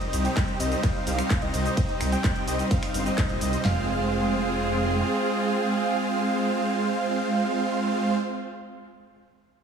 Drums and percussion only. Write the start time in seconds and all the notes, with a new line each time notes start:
0.01 closed hi-hat
0.13 open hi-hat, cabasa
0.25 closed hi-hat, cabasa
0.37 finger snap, kick, clap, closed hi-hat, ride, cabasa
0.48 closed hi-hat
0.60 open hi-hat, cabasa
0.72 closed hi-hat, cabasa
0.83 kick, clap, closed hi-hat, ride, cabasa
1.07 open hi-hat, cabasa
1.19 finger snap, closed hi-hat, cabasa
1.30 kick, clap, closed hi-hat, ride, cabasa
1.42 closed hi-hat
1.54 open hi-hat, cabasa
1.65 closed hi-hat, cabasa
1.77 kick, closed hi-hat, ride, cabasa
1.89 closed hi-hat
2.01 finger snap, open hi-hat, cabasa
2.12 closed hi-hat, cabasa
2.24 kick, clap, closed hi-hat, ride, cabasa
2.36 closed hi-hat
2.48 open hi-hat, cabasa
2.59 closed hi-hat, cabasa
2.71 kick, closed hi-hat, ride, cabasa
2.83 finger snap, open hi-hat
2.94 open hi-hat, cabasa
3.06 closed hi-hat, cabasa
3.18 kick, clap, closed hi-hat, ride, cabasa
3.30 closed hi-hat
3.41 open hi-hat, cabasa
3.53 closed hi-hat, cabasa
3.65 snare, clap, floor tom